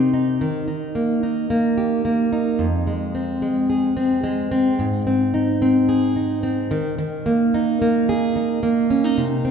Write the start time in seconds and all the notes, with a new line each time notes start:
Already playing: C3 D#3 C4 D#4 G4
0.14 D#4
0.41 D#3
0.68 D#4
0.95 A#3
1.23 D#4
1.50 A#3
1.78 G4
2.05 A#3
2.33 D#4
2.59 F2
2.87 G#3
3.15 C4
3.42 G#3
3.70 G#4
3.97 C4
4.24 G#3
4.51 C4
4.79 G#2
5.07 C4
5.34 D#4
5.62 C4
5.89 G#4
6.16 D#4
6.43 C4
6.71 D#3
6.98 D#3
7.26 A#3
7.54 D#4
7.82 A#3
8.09 G#4
8.36 D#4
8.63 A#3
8.90 C#4
9.04 D#4
9.18 C3
9.45 C4